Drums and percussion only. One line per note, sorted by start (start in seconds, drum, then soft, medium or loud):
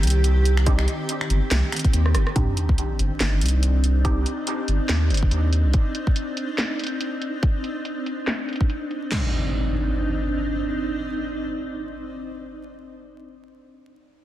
0.03 closed hi-hat soft
0.07 closed hi-hat medium
0.10 closed hi-hat medium
0.24 closed hi-hat medium
0.45 closed hi-hat medium
0.57 finger snap medium
0.66 kick loud
0.66 closed hi-hat medium
0.79 finger snap medium
0.88 closed hi-hat medium
1.09 closed hi-hat medium
1.21 finger snap medium
1.30 closed hi-hat medium
1.51 snare loud
1.51 closed hi-hat medium
1.72 finger snap medium
1.72 closed hi-hat medium
1.76 closed hi-hat medium
1.79 closed hi-hat medium
1.84 kick medium
1.84 closed hi-hat soft
1.93 closed hi-hat medium
2.06 cross-stick medium
2.15 cross-stick medium
2.15 closed hi-hat medium
2.27 cross-stick medium
2.36 kick loud
2.36 closed hi-hat medium
2.57 closed hi-hat medium
2.69 kick medium
2.78 closed hi-hat medium
2.99 closed hi-hat medium
3.20 snare loud
3.20 closed hi-hat medium
3.41 closed hi-hat soft
3.46 closed hi-hat medium
3.48 closed hi-hat medium
3.63 closed hi-hat medium
3.84 closed hi-hat medium
4.05 kick loud
4.05 closed hi-hat medium
4.26 closed hi-hat medium
4.47 closed hi-hat medium
4.68 closed hi-hat medium
4.89 snare loud
4.89 closed hi-hat medium
5.10 closed hi-hat medium
5.14 closed hi-hat medium
5.17 closed hi-hat medium
5.23 kick medium
5.31 closed hi-hat medium
5.53 closed hi-hat medium
5.73 kick loud
5.73 closed hi-hat medium
5.95 closed hi-hat medium
6.07 kick medium
6.16 closed hi-hat medium
6.37 closed hi-hat medium
6.58 snare loud
6.58 closed hi-hat medium
6.79 closed hi-hat soft
6.84 closed hi-hat medium
6.87 closed hi-hat medium
7.01 closed hi-hat medium
7.22 closed hi-hat medium
7.43 kick loud
7.43 closed hi-hat medium
7.64 closed hi-hat soft
7.85 closed hi-hat medium
8.06 closed hi-hat soft
8.27 snare loud
8.27 closed hi-hat medium
8.49 closed hi-hat soft
8.53 closed hi-hat medium
8.56 closed hi-hat medium
8.61 kick medium
8.61 closed hi-hat soft
8.70 closed hi-hat medium
8.91 closed hi-hat medium
9.12 snare loud
9.12 crash medium